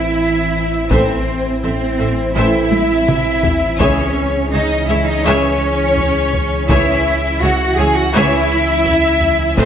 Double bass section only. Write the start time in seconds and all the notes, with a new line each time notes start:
0.92 A1
1.65 A1
2.01 A1
2.37 A1
3.82 C#2
4.53 C#2
4.90 C#2
5.26 C#2
6.70 C#2
7.42 C#2
7.78 C#2
8.15 C#2
9.59 A1